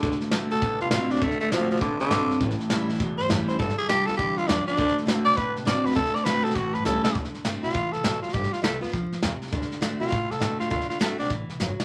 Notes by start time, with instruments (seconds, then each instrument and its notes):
Already playing: tenor saxophone D3
0.03 upright bass D2, steel-string acoustic guitar D3, clean electric guitar D3 A3, kick, snare
0.12 snare
0.21 muted upright bass stroke, snare
0.31 upright bass G2, clean electric guitar D3 A3, steel-string acoustic guitar D3 A3 C4 F#4, snare, hi-hat pedal
0.51 upright bass B2, steel-string acoustic guitar C4 F#4, tenor saxophone A4, snare
0.56 snare
0.61 steel-string acoustic guitar A2, upright bass A2, clean electric guitar D3 B3, kick, snare
0.80 upright bass C3, tenor saxophone F4, snare
0.91 upright bass B2, clean electric guitar D3 C4, steel-string acoustic guitar D3 A3 C4 F#4, tenor saxophone F4, snare, hi-hat pedal
1.10 tenor saxophone D4, muted upright bass stroke, snare
1.16 snare
1.21 upright bass D2, clean electric guitar D3 A3, steel-string acoustic guitar D3, tenor saxophone A3, kick, snare
1.31 snare
1.40 tenor saxophone A3, muted upright bass stroke, snare
1.51 upright bass G2, clean electric guitar D3 A3, steel-string acoustic guitar D3 A3 C4 F#4, tenor saxophone F3, snare, hi-hat pedal
1.71 upright bass B2, tenor saxophone F3, steel-string acoustic guitar C4 F#4, snare
1.77 snare
1.81 upright bass A2, steel-string acoustic guitar C3, clean electric guitar D3 B3, tenor saxophone D3, kick, snare
2.00 upright bass C3, tenor saxophone D3, snare
2.10 steel-string acoustic guitar G2, upright bass B2, clean electric guitar D3 C4, snare, hi-hat pedal
2.30 muted upright bass stroke, snare
2.40 upright bass A1, clean electric guitar A2 E3, steel-string acoustic guitar A2, kick, snare
2.51 snare
2.60 snare
2.69 upright bass D2, clean electric guitar A2 E3, steel-string acoustic guitar E3 G3 C#4 E4, snare, hi-hat pedal
2.88 upright bass F#2, steel-string acoustic guitar C#4 E4, snare
2.95 snare
3.00 upright bass E2, steel-string acoustic guitar E2, clean electric guitar A2 F#3, kick, snare
3.18 upright bass G2, tenor saxophone C5, snare
3.29 upright bass F#2, clean electric guitar A2 G3, steel-string acoustic guitar E3 G3 C#4 E4, snare, hi-hat pedal
3.48 steel-string acoustic guitar C#4 E4, tenor saxophone C5, muted upright bass stroke, snare
3.59 upright bass G1, clean electric guitar G2 D3, steel-string acoustic guitar G3, tenor saxophone A4, kick, snare
3.70 snare
3.78 tenor saxophone G#4, snare
3.89 upright bass C2, clean electric guitar G2 D3, steel-string acoustic guitar G3 B3 F4, tenor saxophone G4, snare, hi-hat pedal
4.06 upright bass E2, steel-string acoustic guitar B3 F4, tenor saxophone A4, snare
4.13 tenor saxophone G4, snare
4.18 upright bass D2, clean electric guitar G2 E3, steel-string acoustic guitar D3, kick, snare
4.37 upright bass F2, tenor saxophone F4, snare
4.47 upright bass E2, clean electric guitar G2 F3, steel-string acoustic guitar G3 B3 F4, tenor saxophone D4, snare, hi-hat pedal
4.67 steel-string acoustic guitar B3 F4, tenor saxophone D4, muted upright bass stroke, snare
4.77 upright bass D2, steel-string acoustic guitar D3, clean electric guitar D3 A3, kick, snare
4.88 snare
4.97 muted upright bass stroke, snare
5.06 upright bass G2, steel-string acoustic guitar D3 A3 C4 F#4, clean electric guitar D3 A3, snare, hi-hat pedal
5.25 upright bass B2, tenor saxophone D5, snare
5.33 steel-string acoustic guitar A2, clean electric guitar D3 B3, tenor saxophone B4, snare
5.37 upright bass A2, kick, snare
5.56 upright bass C3, snare
5.65 upright bass B2, steel-string acoustic guitar D3 A3 C4 F#4, clean electric guitar D3 C4, tenor saxophone D5, snare, hi-hat pedal
5.83 steel-string acoustic guitar C4 F#4, tenor saxophone B4, muted upright bass stroke, snare
5.91 steel-string acoustic guitar D3, clean electric guitar D3 A3, snare
5.96 upright bass D2, tenor saxophone A4, kick, snare
6.06 snare
6.15 tenor saxophone D5, muted upright bass stroke, snare
6.24 upright bass G2, clean electric guitar D3 A3, steel-string acoustic guitar D3 A3 C4 F#4, tenor saxophone B4, snare, hi-hat pedal
6.44 upright bass B2, steel-string acoustic guitar C4 F#4, tenor saxophone A4, snare
6.51 snare
6.55 upright bass A1, clean electric guitar A2 E3, steel-string acoustic guitar A2, tenor saxophone F#4, kick, snare
6.74 upright bass G2, tenor saxophone B4, snare
6.84 upright bass C#2, clean electric guitar A2 G3, steel-string acoustic guitar E3 G3 C#4 E4, tenor saxophone A4, snare, hi-hat pedal
7.04 steel-string acoustic guitar C#4 E4, tenor saxophone A4, muted upright bass stroke, snare
7.15 upright bass D2, steel-string acoustic guitar D3, kick, snare
7.24 snare
7.34 muted upright bass stroke, snare
7.44 upright bass G2, steel-string acoustic guitar D3 A3 C4 F#4, snare, hi-hat pedal
7.63 upright bass B2, steel-string acoustic guitar C4 F#4, tenor saxophone F4, snare
7.70 snare
7.74 upright bass A2, steel-string acoustic guitar E3, kick, snare
7.92 upright bass C3, tenor saxophone A4, snare
8.04 upright bass B2, steel-string acoustic guitar F#3, snare, hi-hat pedal
8.22 tenor saxophone F4, muted upright bass stroke, snare
8.29 steel-string acoustic guitar G3, snare
8.33 upright bass G1, tenor saxophone G4, kick, snare
8.44 snare
8.52 tenor saxophone F4, snare
8.62 upright bass C2, steel-string acoustic guitar G3 B3 F4, tenor saxophone A3, snare, hi-hat pedal
8.81 upright bass E2, tenor saxophone B3, steel-string acoustic guitar B3 F4, snare
8.89 steel-string acoustic guitar F3, snare
8.93 upright bass D2, kick, snare
9.12 upright bass F2, snare
9.22 upright bass E2, steel-string acoustic guitar C3, snare, hi-hat pedal
9.42 muted upright bass stroke, snare
9.47 snare
9.52 upright bass D2, steel-string acoustic guitar D3, kick, snare
9.62 snare
9.71 muted upright bass stroke, snare
9.81 upright bass G2, steel-string acoustic guitar D3 A3 C4 F#4, snare, hi-hat pedal
10.00 upright bass B2, steel-string acoustic guitar C4 F#4, tenor saxophone F4, snare
10.08 steel-string acoustic guitar A2, snare
10.12 upright bass A2, kick, snare
10.30 upright bass C3, tenor saxophone A4, snare
10.40 upright bass B2, steel-string acoustic guitar D3 A3 C4 F#4, snare, hi-hat pedal
10.60 tenor saxophone F4, muted upright bass stroke, snare
10.70 upright bass D2, steel-string acoustic guitar D3, tenor saxophone F4, kick, snare
10.81 snare
10.90 tenor saxophone F4, muted upright bass stroke, snare
10.99 upright bass G2, steel-string acoustic guitar D3 A3 C4 F#4, tenor saxophone A3, snare, hi-hat pedal
11.18 upright bass B2, steel-string acoustic guitar C4 F#4, tenor saxophone D4, snare
11.25 snare
11.30 upright bass A2, steel-string acoustic guitar E3, kick, snare
11.49 upright bass C3, snare
11.60 upright bass F#1, steel-string acoustic guitar F#3, snare, hi-hat pedal
11.79 muted upright bass stroke, snare